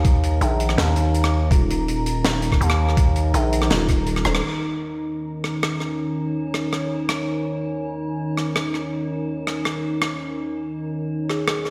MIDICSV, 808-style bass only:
0, 0, Header, 1, 2, 480
1, 0, Start_track
1, 0, Tempo, 365854
1, 63, Time_signature, 4, 2, 24, 8
1, 15352, End_track
2, 0, Start_track
2, 0, Title_t, "808-style bass"
2, 0, Program_c, 0, 38
2, 0, Note_on_c, 0, 39, 98
2, 524, Note_off_c, 0, 39, 0
2, 540, Note_on_c, 0, 34, 101
2, 1003, Note_off_c, 0, 34, 0
2, 1020, Note_on_c, 0, 39, 93
2, 1963, Note_off_c, 0, 39, 0
2, 1979, Note_on_c, 0, 27, 96
2, 3403, Note_off_c, 0, 27, 0
2, 3421, Note_on_c, 0, 39, 99
2, 4363, Note_off_c, 0, 39, 0
2, 4383, Note_on_c, 0, 34, 98
2, 4845, Note_off_c, 0, 34, 0
2, 4858, Note_on_c, 0, 27, 95
2, 5562, Note_off_c, 0, 27, 0
2, 5578, Note_on_c, 0, 27, 96
2, 5802, Note_off_c, 0, 27, 0
2, 15352, End_track
0, 0, End_of_file